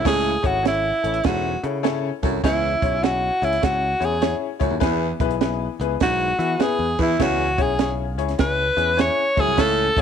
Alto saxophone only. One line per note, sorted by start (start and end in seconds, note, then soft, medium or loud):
0.07 0.48 G#4 loud
0.46 0.66 F#4 loud
0.68 1.27 E4 loud
1.25 1.64 F#4 medium
2.45 3.05 E4 medium
3.03 3.46 F#4 medium
3.44 3.66 E4 medium
3.64 4.06 F#4 medium
4.05 4.36 G#4 medium
6.03 6.63 F#4 loud
6.62 7.01 G#4 loud
7.03 7.24 E4 medium
7.22 7.63 F#4 loud
7.62 7.93 G#4 medium
8.40 9.03 B4 loud
9.01 9.42 C#5 loud
9.40 9.61 G#4 medium
9.60 10.02 A4 loud